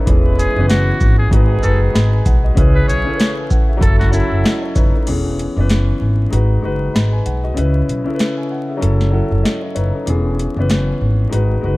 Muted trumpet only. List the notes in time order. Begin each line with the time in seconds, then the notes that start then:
0.39 G#4
0.69 F#4
1.18 G#4
1.63 A4
2.75 B4
2.88 C#5
3.82 A4
3.99 F#4
4.13 E4